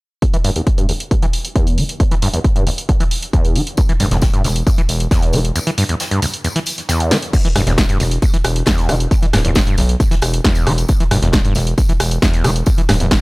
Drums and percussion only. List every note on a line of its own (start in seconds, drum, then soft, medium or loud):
0.22 kick loud
0.22 closed hi-hat medium
0.34 closed hi-hat medium
0.44 open hi-hat loud
0.56 closed hi-hat medium
0.67 kick loud
0.67 closed hi-hat medium
0.78 closed hi-hat medium
0.89 open hi-hat medium
1.00 closed hi-hat medium
1.11 kick loud
1.11 closed hi-hat medium
1.22 closed hi-hat medium
1.33 open hi-hat loud
1.45 closed hi-hat medium
1.56 kick loud
1.56 closed hi-hat medium
1.67 closed hi-hat medium
1.78 open hi-hat medium
1.89 closed hi-hat medium
2.00 kick loud
2.00 closed hi-hat medium
2.11 closed hi-hat medium
2.22 open hi-hat loud
2.34 closed hi-hat medium
2.44 kick loud
2.44 closed hi-hat medium
2.56 closed hi-hat medium
2.67 open hi-hat medium
2.78 closed hi-hat medium
2.89 kick loud
2.89 closed hi-hat medium
3.00 closed hi-hat medium
3.11 open hi-hat loud
3.22 closed hi-hat medium
3.33 kick loud
3.33 closed hi-hat medium
3.45 closed hi-hat medium
3.56 open hi-hat medium
3.67 closed hi-hat medium
3.77 kick loud
3.77 closed hi-hat medium
3.77 tambourine medium
3.89 closed hi-hat soft
3.89 closed hi-hat medium
4.00 open hi-hat loud
4.00 tambourine medium
4.11 snare soft
4.11 closed hi-hat medium
4.22 kick loud
4.22 snare loud
4.22 closed hi-hat medium
4.22 tambourine medium
4.34 closed hi-hat medium
4.44 snare soft
4.44 open hi-hat medium
4.44 tambourine medium
4.56 closed hi-hat medium
4.67 kick loud
4.67 closed hi-hat medium
4.67 tambourine medium
4.78 closed hi-hat medium
4.89 open hi-hat loud
4.89 tambourine medium
5.00 closed hi-hat medium
5.11 kick loud
5.11 snare loud
5.11 closed hi-hat medium
5.11 tambourine medium
5.22 snare soft
5.22 closed hi-hat medium
5.33 open hi-hat medium
5.33 tambourine medium
5.45 closed hi-hat soft
5.45 closed hi-hat medium
5.55 closed hi-hat medium
5.55 tambourine medium
5.67 closed hi-hat medium
5.78 open hi-hat loud
5.78 tambourine medium
5.89 closed hi-hat medium
6.00 snare loud
6.00 closed hi-hat medium
6.00 tambourine medium
6.11 closed hi-hat medium
6.22 open hi-hat medium
6.22 tambourine medium
6.33 closed hi-hat soft
6.33 closed hi-hat medium
6.44 closed hi-hat medium
6.44 tambourine medium
6.56 snare soft
6.56 closed hi-hat medium
6.66 open hi-hat loud
6.66 tambourine medium
6.78 snare soft
6.78 closed hi-hat medium
6.89 snare loud
6.89 closed hi-hat medium
6.89 tambourine medium
7.00 closed hi-hat medium
7.11 snare medium
7.11 open hi-hat medium
7.11 tambourine medium
7.22 closed hi-hat medium
7.33 kick loud
7.33 closed hi-hat medium
7.33 crash medium
7.33 tambourine medium
7.44 closed hi-hat soft
7.44 closed hi-hat medium
7.56 cross-stick medium
7.56 open hi-hat loud
7.56 tambourine medium
7.67 snare soft
7.67 closed hi-hat medium
7.78 kick loud
7.78 snare loud
7.78 closed hi-hat medium
7.78 tambourine medium
7.89 closed hi-hat medium
8.00 snare soft
8.00 open hi-hat medium
8.00 tambourine medium
8.11 closed hi-hat medium
8.22 kick loud
8.22 closed hi-hat medium
8.22 tambourine medium
8.34 closed hi-hat medium
8.44 cross-stick medium
8.44 open hi-hat loud
8.44 tambourine medium
8.56 closed hi-hat medium
8.66 kick loud
8.66 snare loud
8.66 closed hi-hat medium
8.66 tambourine medium
8.78 snare soft
8.78 closed hi-hat medium
8.89 cross-stick medium
8.89 open hi-hat medium
8.89 tambourine medium
9.00 closed hi-hat soft
9.00 closed hi-hat medium
9.11 kick loud
9.11 closed hi-hat medium
9.11 tambourine medium
9.23 closed hi-hat medium
9.33 cross-stick medium
9.33 snare medium
9.33 open hi-hat loud
9.33 tambourine medium
9.45 closed hi-hat medium
9.55 kick loud
9.55 snare loud
9.55 closed hi-hat medium
9.55 tambourine medium
9.67 closed hi-hat medium
9.77 open hi-hat loud
9.77 tambourine medium
9.89 closed hi-hat medium
10.00 kick loud
10.00 closed hi-hat medium
10.00 tambourine medium
10.11 snare medium
10.11 closed hi-hat medium
10.22 cross-stick medium
10.22 open hi-hat loud
10.22 tambourine medium
10.33 closed hi-hat soft
10.33 closed hi-hat medium
10.44 kick loud
10.44 snare loud
10.44 closed hi-hat medium
10.44 tambourine medium
10.55 closed hi-hat medium
10.55 tambourine medium
10.67 cross-stick medium
10.67 open hi-hat medium
10.78 closed hi-hat medium
10.78 tambourine medium
10.88 kick loud
10.88 closed hi-hat medium
10.88 tambourine medium
11.00 closed hi-hat soft
11.00 closed hi-hat medium
11.11 cross-stick medium
11.11 open hi-hat loud
11.11 tambourine medium
11.22 snare soft
11.22 closed hi-hat medium
11.33 kick loud
11.33 snare loud
11.33 closed hi-hat medium
11.33 tambourine medium
11.45 closed hi-hat medium
11.55 snare soft
11.55 open hi-hat medium
11.55 tambourine medium
11.67 closed hi-hat medium
11.78 kick loud
11.78 closed hi-hat medium
11.78 tambourine medium
11.89 closed hi-hat medium
12.00 cross-stick medium
12.00 open hi-hat loud
12.00 tambourine medium
12.11 closed hi-hat medium
12.22 kick loud
12.22 snare loud
12.22 closed hi-hat medium
12.22 tambourine medium
12.34 snare soft
12.34 closed hi-hat medium
12.44 cross-stick medium
12.44 open hi-hat medium
12.44 tambourine medium
12.56 closed hi-hat medium
12.56 closed hi-hat soft
12.66 kick loud
12.66 closed hi-hat medium
12.66 tambourine medium
12.78 closed hi-hat medium
12.89 cross-stick medium
12.89 snare medium
12.89 open hi-hat loud
12.89 tambourine medium
13.00 closed hi-hat medium
13.11 kick loud
13.11 snare loud
13.11 closed hi-hat medium
13.11 tambourine medium